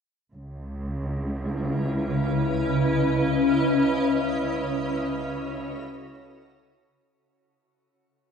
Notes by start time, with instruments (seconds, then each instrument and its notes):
0.33 cello section C#2, ambient pad C#3
0.48 ambient pad C#4 E4
0.93 ambient pad B4
1.61 ambient pad D#5
3.73 cello section C#2
3.99 ambient pad C#5
4.39 ambient pad F#4
4.67 ambient pad A4